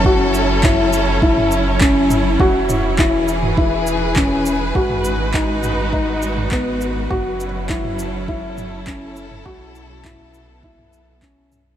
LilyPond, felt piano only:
\new Staff \with { instrumentName = "Felt piano" } { \time 4/4 \key fis \dorian \tempo 4 = 102 fis'4 e'4 e'4 cis'4 | fis'4 e'4 e'4 cis'4 | fis'4 dis'4 dis'4 b4 | fis'4 e'4 e'4 cis'4 |
fis'4 e'4 e'4 cis'4 | }